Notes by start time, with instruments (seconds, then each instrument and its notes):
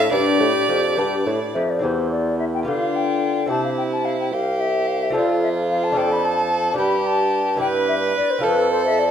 Already playing: bassoon A2, flute A4
0.00 violin E5
0.11 lute G2 C4 D4 G4, bassoon G2, flute G4, violin D5
0.40 bassoon A2, lute A2
0.69 lute F2, bassoon F2
0.97 lute G2 B3 D4 G4, bassoon G2
1.26 bassoon A2, lute A2
1.54 bassoon F2, lute F2, flute E5
1.70 flute D5
1.79 lute C4 E4 G4, flute C5
1.83 bassoon E2, lute E2
2.12 flute D5
2.39 flute E5
2.54 flute G5
2.63 lute B3 F4 G4
2.67 bassoon D3, lute D3, violin F4, flute F5
2.95 flute G5
3.46 lute C4 E4 G4, violin E4, flute A5
3.50 lute C3, bassoon C3
3.64 flute F5
3.77 flute G5
3.92 flute A5
4.05 flute F5
4.20 flute G5
4.32 bassoon C2, violin G4, flute F5
4.60 flute E5
4.88 flute F5
5.02 flute E5
5.10 lute C4 F4 A4
5.15 bassoon F2, lute F2, violin F4, flute D5
5.43 flute E5
5.70 flute F5
5.84 flute A5
5.92 lute D4 F4 A4
5.96 lute F2, bassoon F2, violin A4, flute G5
6.12 flute B5
6.25 flute A5
6.74 lute D4 G4
6.78 lute G2, bassoon G2, violin G4, flute B5
7.07 flute A5
7.56 lute B3 E4 G4
7.60 lute G2, bassoon G2, violin B4, flute G5
7.88 flute E5
8.16 flute D5
8.30 flute C5
8.39 lute C4 F4 A4
8.43 lute F2, bassoon F2, violin A4, flute B4
8.71 flute C5
8.86 flute E5
8.99 flute D5